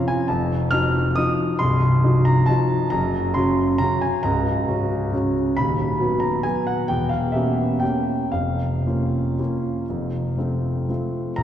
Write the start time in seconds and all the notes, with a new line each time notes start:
Already playing: F3 C#4 F4
0.08 G#5
0.28 F1 F2 A5
0.71 F3 D#4 F#4 F6
1.16 F3 D#4 F#4 D#6
1.59 C1 C2 C6
2.04 F3 D#4 F#4
2.25 A#5
2.46 F3 D#4 F#4 A5
2.90 F#1 F#2 A#5
3.34 C#3 C#4 F#4 C6
3.78 C#3 C#4 F#4 A#5
4.01 G#5
4.23 C#1 C#2 A#5
4.68 C#3 C#4 F#4
5.13 C#3 C#4 F#4
5.57 D#1 D#2 B5
5.99 F#3 B3 F#4
6.20 A#5
6.43 F#3 B3 F#4 G#5
6.67 F#5
6.88 E1 E2 G5
7.09 F5
7.32 A#3 C#4 G4 E5
7.80 A#3 C#4 G4 G5
8.32 F1 F2 F5
8.86 A#3 C#4 F4
9.39 A#3 C#4 F4
9.90 F1 F2
10.37 A3 C4 F4
10.89 A3 C4 F4
11.36 A#1 A#5